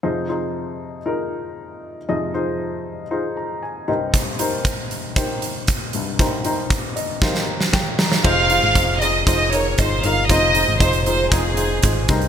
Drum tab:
CC |----------------|----------------|----------------|----------------|
HH |----------------|----------------|x-x-x-x-x-x-x-x-|x-x-x-x---------|
SD |----------------|----------------|----------------|--------oo-oo-oo|
BD |----------------|----------------|o---o---o---o---|o---o---o---o---|

CC |x---------------|----------------|
HH |--x-x-x-x-x-x-x-|x-x-xxx-x-x-x-xx|
SD |----------------|----------------|
BD |o---o---o---o---|o---o---o---o-o-|